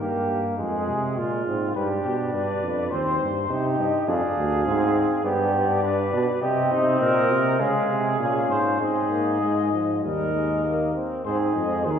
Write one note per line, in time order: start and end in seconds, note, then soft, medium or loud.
0.00 0.58 G2 medium
0.00 0.57 A#3 medium
0.00 0.42 G4 medium
0.58 0.90 F2 medium
0.58 1.44 G#3 medium
0.58 1.18 G#4 medium
0.89 1.19 C3 medium
1.17 1.46 A#2 medium
1.17 1.75 F4 medium
1.47 1.75 G#2 medium
1.47 1.75 C4 medium
1.75 2.04 G2 medium
1.75 2.90 D4 medium
1.75 2.32 G4 medium
1.75 1.88 B4 medium
2.04 2.33 B2 medium
2.04 2.17 G4 medium
2.33 2.64 G2 medium
2.33 2.90 B4 medium
2.33 2.92 D5 medium
2.63 2.91 F2 medium
2.91 3.20 D#2 medium
2.91 3.29 C4 medium
2.91 3.78 C5 medium
2.91 3.29 C5 medium
3.21 3.49 G2 medium
3.50 3.78 C3 medium
3.50 4.04 D#4 medium
3.50 4.09 G4 medium
3.79 3.92 G2 medium
3.79 4.09 D#5 medium
4.07 4.21 F2 medium
4.07 4.65 D4 medium
4.07 5.23 G#4 medium
4.07 5.24 F5 medium
4.37 4.66 D2 medium
4.66 5.03 G#2 medium
4.66 5.23 C4 medium
5.24 6.09 G2 medium
5.24 5.52 B3 medium
5.24 5.82 G4 medium
5.24 6.40 D5 medium
5.53 5.82 B3 medium
5.83 5.96 D4 medium
5.83 6.41 B4 medium
6.12 6.26 B2 medium
6.12 6.26 D4 medium
6.41 6.71 C3 medium
6.41 7.57 C4 medium
6.41 6.73 G4 medium
6.41 7.00 D#5 medium
6.71 7.00 C3 medium
6.71 7.00 D#4 medium
7.01 7.32 A#2 medium
7.01 7.61 A#4 medium
7.01 7.61 D#5 medium
7.31 7.60 C3 medium
7.59 7.73 C#3 medium
7.59 8.18 G#3 medium
7.59 8.49 G#4 medium
7.59 7.98 F5 medium
7.89 8.19 C3 medium
8.18 8.49 A#2 medium
8.18 8.79 C#4 medium
8.18 8.76 F5 medium
8.49 8.79 G#2 medium
8.49 8.79 C5 medium
8.80 10.01 G#2 medium
8.80 9.12 C4 medium
8.80 9.72 G#4 medium
8.80 10.01 D#5 medium
9.10 9.41 A#3 medium
9.41 9.72 G#3 medium
9.72 10.05 F3 medium
10.03 10.93 D#2 medium
10.03 10.33 G3 medium
10.03 10.91 A#4 medium
10.03 10.93 D#5 medium
10.34 10.63 G#3 medium
10.64 10.94 A#3 medium
10.95 11.24 C4 medium
11.25 11.53 G#2 medium
11.25 11.53 C4 medium
11.25 11.81 G#4 medium
11.25 11.38 C5 medium
11.55 11.87 F2 medium
11.55 11.84 G#2 medium
11.55 11.86 D#5 medium
11.85 11.99 D#2 medium
11.85 11.99 D#3 medium
11.85 11.99 G#4 medium
11.85 11.93 C5 medium
11.91 11.99 A#4 medium